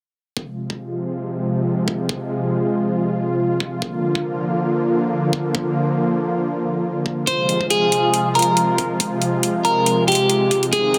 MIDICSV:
0, 0, Header, 1, 4, 480
1, 0, Start_track
1, 0, Tempo, 431655
1, 408, Time_signature, 4, 2, 24, 8
1, 12214, End_track
2, 0, Start_track
2, 0, Title_t, "Clean electric guitar"
2, 0, Program_c, 0, 27
2, 8087, Note_on_c, 0, 72, 94
2, 8516, Note_off_c, 0, 72, 0
2, 8568, Note_on_c, 0, 68, 88
2, 9200, Note_off_c, 0, 68, 0
2, 9288, Note_on_c, 0, 70, 86
2, 9920, Note_off_c, 0, 70, 0
2, 10727, Note_on_c, 0, 70, 80
2, 11156, Note_off_c, 0, 70, 0
2, 11208, Note_on_c, 0, 67, 89
2, 11840, Note_off_c, 0, 67, 0
2, 11927, Note_on_c, 0, 68, 90
2, 12214, Note_off_c, 0, 68, 0
2, 12214, End_track
3, 0, Start_track
3, 0, Title_t, "Supersaw synth"
3, 0, Program_c, 1, 81
3, 406, Note_on_c, 1, 53, 73
3, 406, Note_on_c, 1, 65, 91
3, 407, Note_on_c, 1, 48, 83
3, 407, Note_on_c, 1, 56, 75
3, 4209, Note_off_c, 1, 48, 0
3, 4209, Note_off_c, 1, 53, 0
3, 4209, Note_off_c, 1, 56, 0
3, 4248, Note_on_c, 1, 50, 83
3, 4248, Note_on_c, 1, 53, 78
3, 4248, Note_on_c, 1, 58, 75
3, 8043, Note_off_c, 1, 65, 0
3, 8049, Note_off_c, 1, 53, 0
3, 8049, Note_off_c, 1, 58, 0
3, 8050, Note_off_c, 1, 50, 0
3, 8088, Note_on_c, 1, 48, 84
3, 8088, Note_on_c, 1, 53, 78
3, 8088, Note_on_c, 1, 56, 74
3, 8089, Note_on_c, 1, 65, 90
3, 11889, Note_off_c, 1, 53, 0
3, 11890, Note_off_c, 1, 65, 0
3, 11928, Note_on_c, 1, 51, 78
3, 11928, Note_on_c, 1, 63, 90
3, 12214, Note_off_c, 1, 48, 0
3, 12214, Note_off_c, 1, 51, 0
3, 12214, Note_off_c, 1, 56, 0
3, 12214, Note_off_c, 1, 63, 0
3, 12214, End_track
4, 0, Start_track
4, 0, Title_t, "Drums"
4, 407, Note_on_c, 9, 36, 113
4, 518, Note_off_c, 9, 36, 0
4, 778, Note_on_c, 9, 36, 56
4, 889, Note_off_c, 9, 36, 0
4, 2087, Note_on_c, 9, 36, 94
4, 2198, Note_off_c, 9, 36, 0
4, 2327, Note_on_c, 9, 36, 116
4, 2438, Note_off_c, 9, 36, 0
4, 4007, Note_on_c, 9, 36, 59
4, 4119, Note_off_c, 9, 36, 0
4, 4248, Note_on_c, 9, 36, 119
4, 4359, Note_off_c, 9, 36, 0
4, 4618, Note_on_c, 9, 36, 59
4, 4729, Note_off_c, 9, 36, 0
4, 5928, Note_on_c, 9, 36, 100
4, 6039, Note_off_c, 9, 36, 0
4, 6168, Note_on_c, 9, 36, 118
4, 6279, Note_off_c, 9, 36, 0
4, 7847, Note_on_c, 9, 36, 57
4, 7959, Note_off_c, 9, 36, 0
4, 8087, Note_on_c, 9, 36, 116
4, 8088, Note_on_c, 9, 42, 72
4, 8199, Note_off_c, 9, 36, 0
4, 8199, Note_off_c, 9, 42, 0
4, 8328, Note_on_c, 9, 42, 45
4, 8439, Note_off_c, 9, 42, 0
4, 8458, Note_on_c, 9, 36, 57
4, 8568, Note_on_c, 9, 42, 72
4, 8569, Note_off_c, 9, 36, 0
4, 8679, Note_off_c, 9, 42, 0
4, 8808, Note_on_c, 9, 42, 46
4, 8919, Note_off_c, 9, 42, 0
4, 9047, Note_on_c, 9, 42, 69
4, 9159, Note_off_c, 9, 42, 0
4, 9287, Note_on_c, 9, 42, 44
4, 9331, Note_off_c, 9, 42, 0
4, 9331, Note_on_c, 9, 42, 56
4, 9367, Note_off_c, 9, 42, 0
4, 9367, Note_on_c, 9, 42, 70
4, 9479, Note_off_c, 9, 42, 0
4, 9527, Note_on_c, 9, 42, 71
4, 9639, Note_off_c, 9, 42, 0
4, 9767, Note_on_c, 9, 42, 45
4, 9768, Note_on_c, 9, 36, 97
4, 9879, Note_off_c, 9, 36, 0
4, 9879, Note_off_c, 9, 42, 0
4, 10007, Note_on_c, 9, 42, 71
4, 10008, Note_on_c, 9, 36, 113
4, 10119, Note_off_c, 9, 36, 0
4, 10119, Note_off_c, 9, 42, 0
4, 10248, Note_on_c, 9, 42, 47
4, 10359, Note_off_c, 9, 42, 0
4, 10487, Note_on_c, 9, 42, 73
4, 10599, Note_off_c, 9, 42, 0
4, 10728, Note_on_c, 9, 42, 49
4, 10839, Note_off_c, 9, 42, 0
4, 10968, Note_on_c, 9, 42, 72
4, 11079, Note_off_c, 9, 42, 0
4, 11208, Note_on_c, 9, 42, 44
4, 11251, Note_off_c, 9, 42, 0
4, 11251, Note_on_c, 9, 42, 60
4, 11288, Note_off_c, 9, 42, 0
4, 11288, Note_on_c, 9, 42, 71
4, 11399, Note_off_c, 9, 42, 0
4, 11448, Note_on_c, 9, 42, 75
4, 11559, Note_off_c, 9, 42, 0
4, 11688, Note_on_c, 9, 36, 55
4, 11688, Note_on_c, 9, 42, 49
4, 11799, Note_off_c, 9, 36, 0
4, 11799, Note_off_c, 9, 42, 0
4, 11819, Note_on_c, 9, 42, 33
4, 11927, Note_off_c, 9, 42, 0
4, 11927, Note_on_c, 9, 42, 77
4, 11928, Note_on_c, 9, 36, 108
4, 12039, Note_off_c, 9, 36, 0
4, 12039, Note_off_c, 9, 42, 0
4, 12168, Note_on_c, 9, 42, 50
4, 12214, Note_off_c, 9, 42, 0
4, 12214, End_track
0, 0, End_of_file